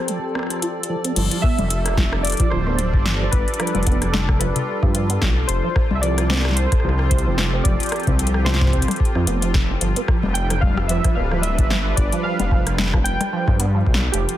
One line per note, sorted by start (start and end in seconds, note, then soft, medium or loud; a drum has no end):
0.00 1.16 F3 medium
0.00 1.16 C4 medium
0.00 2.91 G4 medium
0.00 14.37 A4 medium
0.00 0.85 C5 medium
0.00 1.17 D5 medium
0.08 0.19 F3 medium
0.08 closed hi-hat medium
0.35 0.50 C4 medium
0.35 cross-stick medium
0.39 cross-stick soft
0.43 cross-stick soft
0.47 cross-stick soft
0.50 cross-stick soft
0.50 closed hi-hat soft
0.53 cross-stick soft
0.56 cross-stick soft
0.59 0.73 F4 medium
0.59 cross-stick soft
0.59 closed hi-hat medium
0.83 closed hi-hat medium
0.89 0.95 F3 loud
1.04 1.13 C4 loud
1.04 closed hi-hat medium
1.16 1.28 G1 loud
1.16 1.31 F3 loud
1.16 5.49 G3 medium
1.16 14.37 F4 medium
1.16 closed hi-hat medium
1.16 crash loud
1.31 1.43 F3 medium
1.31 6.98 D4 loud
1.31 closed hi-hat medium
1.42 1.60 B3 medium
1.42 2.26 E5 loud
1.42 kick loud
1.59 2.34 F1 loud
1.59 1.67 F3 medium
1.59 closed hi-hat soft
1.59 low conga medium
1.70 closed hi-hat medium
1.79 6.34 D5 medium
1.86 cross-stick medium
1.86 closed hi-hat medium
1.88 cross-stick soft
1.92 cross-stick soft
1.94 cross-stick soft
1.96 2.04 F3 medium
1.96 kick loud
1.96 cross-stick soft
1.96 snare loud
1.96 low conga medium
2.13 cross-stick medium
2.23 2.52 D5 loud
2.23 closed hi-hat medium
2.27 closed hi-hat medium
2.30 closed hi-hat medium
2.32 closed hi-hat soft
2.37 2.51 F3 loud
2.37 kick loud
2.37 closed hi-hat soft
2.40 closed hi-hat medium
2.50 2.95 D1 medium
2.50 2.66 F3 medium
2.50 3.34 C5 loud
2.50 cross-stick medium
2.67 2.80 B3 medium
2.67 cross-stick soft
2.79 2.89 F3 medium
2.79 closed hi-hat medium
2.94 3.28 G1 loud
2.94 kick loud
3.06 snare loud
3.21 3.26 F3 medium
3.31 3.44 G1 loud
3.31 3.57 B4 loud
3.31 kick loud
3.31 closed hi-hat medium
3.48 closed hi-hat soft
3.54 closed hi-hat soft
3.58 3.74 F3 loud
3.58 4.09 B4 loud
3.58 cross-stick medium
3.58 closed hi-hat soft
3.67 closed hi-hat soft
3.75 4.51 F1 loud
3.75 3.86 F3 medium
3.75 closed hi-hat soft
3.75 low conga medium
3.83 closed hi-hat soft
3.87 4.03 B3 medium
3.87 kick loud
3.87 closed hi-hat medium
4.02 4.10 F3 medium
4.02 cross-stick medium
4.02 closed hi-hat medium
4.12 4.41 A4 medium
4.12 snare loud
4.12 low conga medium
4.29 kick loud
4.29 cross-stick medium
4.39 4.47 F3 medium
4.39 5.17 B4 medium
4.39 closed hi-hat medium
4.56 closed hi-hat medium
4.56 low conga medium
4.83 5.18 G2 loud
4.83 4.94 F3 loud
4.83 kick loud
4.83 cross-stick soft
4.95 5.09 F3 medium
4.95 closed hi-hat medium
5.10 5.23 B3 medium
5.10 closed hi-hat medium
5.22 5.44 B1 medium
5.22 5.32 F3 medium
5.22 kick loud
5.22 snare loud
5.47 5.61 F1 loud
5.47 9.81 F3 medium
5.47 5.97 C5 loud
5.47 closed hi-hat medium
5.64 5.69 F3 medium
5.76 kick loud
5.76 cross-stick medium
5.91 6.67 C2 loud
5.91 low conga medium
5.95 9.81 C4 medium
5.95 6.02 E5 medium
6.01 6.17 F3 loud
6.01 11.12 G4 medium
6.01 6.58 D5 loud
6.01 closed hi-hat medium
6.18 6.29 F3 medium
6.18 cross-stick medium
6.18 closed hi-hat medium
6.30 6.46 C4 medium
6.30 snare loud
6.30 low conga medium
6.34 snare loud
6.37 snare medium
6.41 cross-stick medium
6.41 snare medium
6.45 6.53 F3 medium
6.45 snare medium
6.48 snare soft
6.51 snare soft
6.54 7.08 C5 loud
6.54 snare soft
6.54 closed hi-hat medium
6.72 kick loud
6.72 cross-stick soft
6.72 closed hi-hat medium
6.80 cross-stick soft
6.84 7.28 C2 medium
6.84 6.90 F3 medium
6.89 cross-stick soft
6.99 cross-stick soft
7.09 7.66 C5 loud
7.09 kick loud
7.09 closed hi-hat medium
7.18 closed hi-hat medium
7.26 7.61 F1 medium
7.26 7.37 F3 loud
7.38 7.52 F3 medium
7.38 snare loud
7.53 7.67 C4 medium
7.63 7.77 F1 loud
7.63 7.75 F3 medium
7.63 8.14 D5 loud
7.63 kick loud
7.63 closed hi-hat medium
7.80 closed hi-hat soft
7.83 closed hi-hat soft
7.89 cross-stick medium
7.89 closed hi-hat soft
7.92 closed hi-hat soft
8.00 closed hi-hat soft
8.03 8.83 C2 loud
8.03 8.12 F3 medium
8.03 kick loud
8.03 closed hi-hat soft
8.07 closed hi-hat soft
8.07 low conga medium
8.19 closed hi-hat medium
8.27 closed hi-hat medium
8.34 cross-stick medium
8.45 8.60 F3 loud
8.45 8.96 C5 loud
8.45 snare loud
8.45 low conga medium
8.54 snare loud
8.61 8.73 F3 medium
8.61 kick loud
8.61 snare medium
8.64 kick loud
8.67 kick medium
8.67 snare medium
8.70 kick medium
8.73 8.90 C4 medium
8.73 kick medium
8.73 closed hi-hat soft
8.77 kick soft
8.81 kick soft
8.81 closed hi-hat soft
8.84 8.96 F3 medium
8.84 kick soft
8.84 cross-stick soft
8.84 closed hi-hat soft
8.84 low conga medium
8.91 closed hi-hat medium
8.96 kick loud
8.96 closed hi-hat soft
9.05 closed hi-hat soft
9.15 9.27 F2 loud
9.15 9.27 F3 medium
9.15 cross-stick soft
9.27 9.77 F1 medium
9.27 9.42 B3 loud
9.27 closed hi-hat medium
9.42 9.71 F3 medium
9.42 closed hi-hat medium
9.54 kick loud
9.54 snare loud
9.69 9.81 F4 medium
9.81 9.93 G1 loud
9.81 9.96 F3 medium
9.81 14.14 G3 medium
9.81 closed hi-hat medium
9.96 10.01 B3 medium
9.96 closed hi-hat medium
10.05 10.23 F3 medium
10.05 14.37 B4 medium
10.05 kick loud
10.05 cross-stick medium
10.23 10.99 F1 loud
10.23 low conga medium
10.30 14.37 D4 medium
10.34 10.62 G5 loud
10.34 closed hi-hat medium
10.50 10.55 F3 medium
10.50 cross-stick soft
10.50 closed hi-hat medium
10.61 10.89 F5 loud
10.61 kick loud
10.61 low conga soft
10.66 low conga medium
10.70 low conga medium
10.74 cross-stick medium
10.74 low conga medium
10.88 11.04 F3 loud
10.88 11.16 E5 loud
10.88 closed hi-hat medium
11.04 11.16 F3 medium
11.04 kick loud
11.04 cross-stick soft
11.04 closed hi-hat medium
11.15 11.60 D1 medium
11.15 11.23 B3 medium
11.15 11.44 F5 medium
11.31 11.43 F3 medium
11.31 cross-stick soft
11.42 11.93 E5 loud
11.42 closed hi-hat medium
11.58 11.93 G1 loud
11.58 kick loud
11.58 closed hi-hat soft
11.70 11.77 F3 medium
11.70 snare loud
11.96 12.09 G1 loud
11.96 12.25 D5 loud
11.96 kick loud
11.96 closed hi-hat medium
12.12 12.24 F3 loud
12.12 closed hi-hat medium
12.23 12.39 F3 medium
12.23 12.74 F5 medium
12.40 13.15 F1 loud
12.40 12.44 B3 medium
12.40 closed hi-hat soft
12.40 low conga loud
12.51 12.66 F3 medium
12.51 kick loud
12.67 cross-stick medium
12.67 closed hi-hat medium
12.78 snare loud
12.78 low conga loud
12.81 snare medium
12.84 snare medium
12.86 snare medium
12.88 snare medium
12.91 12.99 F3 medium
12.91 kick loud
12.91 cross-stick medium
12.91 snare soft
13.04 13.55 G5 loud
13.04 closed hi-hat medium
13.21 cross-stick medium
13.21 closed hi-hat soft
13.21 low conga medium
13.33 13.47 F3 loud
13.48 13.83 G2 loud
13.48 13.59 F3 medium
13.48 kick loud
13.48 cross-stick soft
13.60 13.66 B3 medium
13.60 closed hi-hat medium
13.75 13.86 F3 medium
13.87 14.08 B1 medium
13.87 kick loud
13.94 snare loud
14.12 14.25 F1 loud
14.12 14.20 F3 medium
14.12 14.37 F3 medium
14.12 14.37 G4 loud
14.12 closed hi-hat medium
14.29 closed hi-hat medium
14.33 14.37 C4 medium